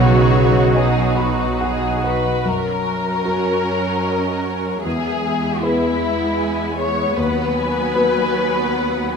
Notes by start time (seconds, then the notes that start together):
Already playing: B1 C#3 F#3 D#4 F#4 B4 C#5
0.32 F#4
0.74 B2 G#4 B4 D#5
1.17 F#4 B5
1.61 G#4 F#5
2.03 F#4 B4
2.45 F#2 C#4 F#4 A#4
3.26 F#4 A#4 C#5
4.06 D#5
4.46 C#5
4.84 E2 G#3 B3 G#4 E5
5.63 B3 E4 G#4 B4
6.39 G#5
6.77 C#5 E5
7.16 D#2 F#3 B4 F#5
7.55 G#5
7.94 B3 F#4 B4
8.71 F#5
9.10 G#5